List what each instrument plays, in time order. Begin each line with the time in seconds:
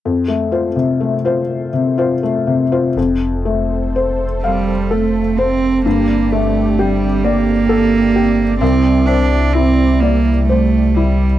0.05 felt piano F2
0.28 felt piano A3
0.52 felt piano F4 C5
0.76 felt piano C3
1.01 felt piano A3
1.25 felt piano F4 C5
1.73 felt piano C3
1.98 felt piano F4 C5
2.23 felt piano A3
2.47 felt piano C3
2.72 felt piano F4 C5
2.95 sub bass F1, felt piano F2, analog synth pad C4 A4 C5
3.45 felt piano A3
3.96 felt piano C5
4.43 cello G3, felt piano F5
4.91 cello A3, felt piano A4
5.39 cello C4, felt piano C5
5.85 sub bass G1, felt piano G2, cello A#3, analog synth pad G4 D5
6.32 felt piano A3, cello A3
6.79 cello G3, felt piano G4
7.24 cello A#3, felt piano D5
7.69 felt piano A4
8.16 felt piano G4
8.60 felt piano C2, sub bass C2, analog synth pad G3 E4, cello C4
9.07 felt piano C4, cello D4
9.54 cello C4, felt piano E4
10.01 cello A#3, felt piano D5
10.47 cello A3, felt piano C5
10.95 cello G3, felt piano E4